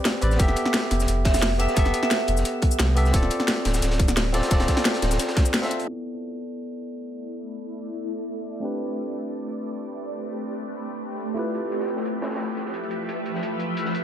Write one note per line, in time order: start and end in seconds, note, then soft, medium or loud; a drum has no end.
0.00 0.21 C4 loud
0.00 0.22 G4 medium
0.00 0.23 B4 medium
0.00 0.24 D5 loud
0.05 snare loud
0.05 closed hi-hat medium
0.05 closed hi-hat loud
0.05 cabasa soft
0.13 snare soft
0.21 0.38 A1 medium
0.21 0.33 C4 medium
0.21 0.33 G4 medium
0.21 0.34 B4 medium
0.21 0.34 D5 medium
0.21 closed hi-hat medium
0.21 cabasa soft
0.31 snare medium
0.31 cabasa soft
0.37 0.55 F1 loud
0.37 1.56 B3 loud
0.37 1.57 G4 medium
0.37 1.58 A4 medium
0.37 kick loud
0.37 closed hi-hat medium
0.37 cabasa soft
0.42 1.59 E5 loud
0.48 snare soft
0.56 closed hi-hat medium
0.56 cabasa soft
0.66 snare soft
0.74 snare loud
0.74 closed hi-hat medium
0.74 cabasa soft
0.83 snare medium
0.91 1.07 F1 loud
0.91 snare soft
0.91 closed hi-hat medium
0.91 cabasa soft
1.00 snare medium
1.00 cabasa medium
1.08 1.67 F1 loud
1.08 closed hi-hat medium
1.08 cabasa medium
1.25 1.46 E5 medium
1.25 kick loud
1.25 snare loud
1.25 closed hi-hat medium
1.34 snare medium
1.34 closed hi-hat medium
1.34 cabasa medium
1.38 snare medium
1.38 closed hi-hat medium
1.42 snare loud
1.42 closed hi-hat medium
1.42 open hi-hat medium
1.42 cabasa medium
1.58 1.70 B3 medium
1.58 1.70 G4 medium
1.58 1.71 A4 medium
1.58 1.80 E5 medium
1.58 1.71 E5 medium
1.58 snare soft
1.58 closed hi-hat medium
1.58 cabasa soft
1.68 snare medium
1.68 cabasa soft
1.74 1.92 F1 loud
1.74 2.94 B3 loud
1.74 2.94 G4 medium
1.74 2.95 A4 medium
1.74 kick loud
1.74 closed hi-hat loud
1.74 closed hi-hat medium
1.74 cabasa medium
1.79 2.96 E5 loud
1.85 snare soft
1.85 closed hi-hat soft
1.94 closed hi-hat medium
1.94 cabasa soft
2.03 2.28 E5 medium
2.03 snare soft
2.11 snare loud
2.11 closed hi-hat medium
2.11 cabasa medium
2.28 2.44 F1 loud
2.28 closed hi-hat medium
2.28 cabasa soft
2.37 snare soft
2.37 cabasa medium
2.45 closed hi-hat medium
2.45 cabasa medium
2.62 kick loud
2.62 closed hi-hat medium
2.71 cabasa medium
2.79 3.13 C2 medium
2.79 snare loud
2.79 closed hi-hat medium
2.79 cabasa medium
2.88 snare soft
2.95 3.07 B3 medium
2.95 3.08 G4 medium
2.95 3.08 A4 medium
2.95 3.08 E5 medium
2.95 closed hi-hat medium
2.95 cabasa soft
3.05 snare medium
3.05 cabasa soft
3.11 3.29 D1 loud
3.11 4.31 C4 loud
3.11 4.31 F4 medium
3.11 4.32 A4 medium
3.11 kick loud
3.11 closed hi-hat medium
3.11 cabasa medium
3.16 4.33 D5 loud
3.23 snare soft
3.30 closed hi-hat medium
3.30 cabasa soft
3.40 snare soft
3.48 snare loud
3.48 closed hi-hat medium
3.48 cabasa medium
3.57 snare medium
3.65 3.81 D1 loud
3.65 snare loud
3.65 snare soft
3.65 closed hi-hat medium
3.65 cabasa soft
3.74 snare loud
3.74 closed hi-hat medium
3.74 cabasa medium
3.82 4.41 D1 loud
3.82 snare loud
3.82 closed hi-hat medium
3.82 cabasa medium
3.91 snare loud
3.91 closed hi-hat medium
3.99 kick loud
3.99 closed hi-hat medium
4.08 snare medium
4.08 cabasa medium
4.17 snare loud
4.17 closed hi-hat loud
4.17 open hi-hat medium
4.17 cabasa medium
4.33 4.44 C4 medium
4.33 4.45 F4 medium
4.33 4.45 A4 medium
4.33 4.45 D5 loud
4.33 snare loud
4.33 closed hi-hat medium
4.33 cabasa soft
4.43 snare loud
4.43 closed hi-hat medium
4.43 cabasa soft
4.48 4.66 D1 loud
4.48 5.60 C4 medium
4.48 5.61 F4 medium
4.48 5.61 A4 medium
4.48 kick loud
4.48 snare loud
4.48 closed hi-hat medium
4.48 closed hi-hat loud
4.48 cabasa soft
4.53 5.62 D5 loud
4.60 snare loud
4.60 snare soft
4.60 closed hi-hat medium
4.68 kick medium
4.68 snare loud
4.68 closed hi-hat medium
4.68 cabasa soft
4.76 snare loud
4.76 snare medium
4.76 closed hi-hat medium
4.85 snare loud
4.85 closed hi-hat medium
4.85 closed hi-hat loud
4.85 cabasa soft
4.94 snare loud
4.94 closed hi-hat medium
5.02 5.18 D1 loud
5.02 snare loud
5.02 snare soft
5.02 closed hi-hat medium
5.02 cabasa soft
5.11 snare loud
5.11 closed hi-hat medium
5.11 cabasa medium
5.19 snare loud
5.19 closed hi-hat medium
5.19 cabasa medium
5.28 snare loud
5.28 closed hi-hat medium
5.37 kick loud
5.37 snare loud
5.37 snare soft
5.37 closed hi-hat medium
5.46 cabasa medium
5.54 snare loud
5.54 closed hi-hat loud
5.54 closed hi-hat medium
5.54 cabasa medium
5.61 5.86 C4 medium
5.61 5.86 F4 medium
5.61 5.86 A4 medium
5.61 5.87 E5 loud
5.61 snare loud
5.61 closed hi-hat medium
5.71 closed hi-hat medium
5.71 cabasa soft
5.79 closed hi-hat medium
5.79 cabasa soft
5.86 8.60 A3 medium
5.86 8.59 B3 medium
5.86 8.60 E4 medium
5.86 11.33 D5 medium
8.60 11.33 A3 medium
8.60 14.04 A3 medium
8.60 11.34 C4 medium
8.60 11.35 D4 medium
8.60 14.04 G4 medium
8.60 11.35 G4 medium
8.60 11.34 B4 medium
8.65 11.36 B4 medium
11.34 14.04 F3 medium
11.34 14.04 A3 medium
11.34 14.04 E4 medium
11.34 14.04 F4 medium
11.34 14.04 G4 medium
11.34 14.04 B4 medium
11.34 14.04 E5 medium
11.34 closed hi-hat medium
11.39 14.04 B4 medium
11.55 closed hi-hat medium
11.72 closed hi-hat medium
11.79 snare soft
11.88 closed hi-hat medium
11.97 snare soft
12.05 closed hi-hat medium
12.22 snare loud
12.22 closed hi-hat medium
12.30 snare medium
12.30 closed hi-hat medium
12.35 snare medium
12.35 closed hi-hat medium
12.40 open hi-hat medium
12.57 snare soft
12.57 closed hi-hat medium
12.66 snare soft
12.74 closed hi-hat medium
12.83 closed hi-hat soft
12.91 closed hi-hat medium
13.09 closed hi-hat medium
13.26 closed hi-hat medium
13.35 snare soft
13.43 closed hi-hat medium
13.59 closed hi-hat medium
13.77 closed hi-hat medium
13.85 snare soft
13.95 closed hi-hat medium